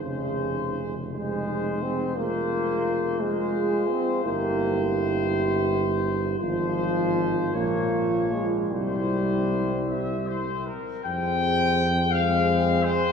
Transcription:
<<
  \new Staff \with { instrumentName = "Trumpet section" } { \time 6/8 \key f \minor \tempo 4. = 56 c''4. c''4. | c''4. c''4. | c''2. | c''4. des''4. |
c''4. e''8 c''8 bes'8 | g''4. f''4 c''8 | }
  \new Staff \with { instrumentName = "French horn section" } { \time 6/8 \key f \minor aes'4. aes'4. | aes'4. aes'4. | g'2. | f'4. f'4. |
e'2~ e'8 r8 | aes'4. aes'4. | }
  \new Staff \with { instrumentName = "Euphonium" } { \time 6/8 \key f \minor ees'4 r8 ees'4. | f'4. f'4. | e'2. | f'4. f'4. |
c'2~ c'8 r8 | c'4. c'4. | }
  \new Staff \with { instrumentName = "Trombone" } { \clef bass \time 6/8 \key f \minor des4 r8 aes4 c'8 | bes4. aes4 c'8 | bes4. r4. | f4. bes4 aes8 |
g2~ g8 r8 | r4. aes4. | }
  \new Staff \with { instrumentName = "Tuba" } { \clef bass \time 6/8 \key f \minor f,,2.~ | f,,2~ f,,8 r8 | g,,2. | aes,,4. bes,,4. |
c,2~ c,8 r8 | f,2. | }
>>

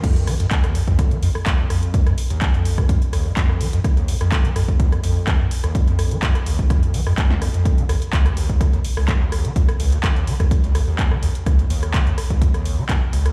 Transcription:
<<
  \new Staff \with { instrumentName = "Acid bass" } { \clef bass \time 4/4 \key ees \dorian \tempo 4 = 126 f,8 f16 f,16 r16 ees,16 f,16 f,8 f16 f,16 r16 ees,16 f,16 f,8 | f16 f,16 r16 ees,16 f,16 f,8 f16 f,16 r16 ees,16 f,16 f,8 f16 f,16 | r16 ees,16 f,16 f,8 f16 f,16 r16 ees,16 f,16 f,8 f16 f,16 r16 ees,16 | f,16 f,8 f16 f,16 r16 ees,16 f,16 f,8 f16 f,16 r16 ees,16 f,16 f,16~ |
f,16 ees16 ees,16 r16 des,16 ees,16 ees,8 ees16 ees,16 r16 des,16 ees,16 ees,8 ees16 | ees,16 r16 des,16 ees,16 ees,8 ees16 ees,16 r16 des,16 ees,16 ees,8 ees16 ees,16 r16 | des,16 ees,16 ees,8 ees16 ees,16 r16 des,16 ees,16 ees,8 ees16 ees,16 r16 des,16 ees,16 | }
  \new DrumStaff \with { instrumentName = "Drums" } \drummode { \time 4/4 <cymc hh bd>16 hh16 <hho ss>16 hh16 <hc hh bd>16 <hh ss>16 hho16 <hh bd>16 <hh bd ss>16 hh16 hho16 ss16 <hc hh bd>8 <hho ss>16 hh16 | <hh bd>16 <hh ss>16 hho16 hh16 <hc hh bd ss>16 hh16 hho16 <hh bd ss>16 <hh bd>16 hh16 <hho ss>8 <hc hh bd>16 ss16 hho16 hh16 | <hh bd ss>16 hh16 hho16 <hh ss>16 <hc hh bd>16 hh16 <hho ss>16 <hh bd>16 <hh bd>16 <hh ss>16 hho8 <hc hh bd ss>8 hho16 <hh ss>16 | <hh bd>16 hh16 <hho ss>16 hh16 <hc hh bd>16 <hh ss>16 hho16 <hh bd>16 <hh bd ss>16 hh16 hho16 ss16 <hc hh bd>16 sn16 <hho ss>16 hh16 |
<hh bd>16 hh16 <hho ss>16 hh16 <hc hh bd>16 <hh ss>16 hho16 <hh bd>16 <hh bd ss>16 hh16 hho16 ss16 <hc hh bd>8 <hho ss>16 hh16 | <hh bd>16 <hh ss>16 hho16 hh16 <hc hh bd ss>16 hh16 hho16 <hh bd ss>16 <hh bd>16 hh16 <hho ss>8 <hc hh bd>16 ss16 hho16 hh16 | <hh bd ss>16 hh16 hho16 <hh ss>16 <hc hh bd>16 hh16 <hho ss>16 <hh bd>16 <hh bd>16 <hh ss>16 hho8 <hc hh bd ss>8 hho16 <hh ss>16 | }
>>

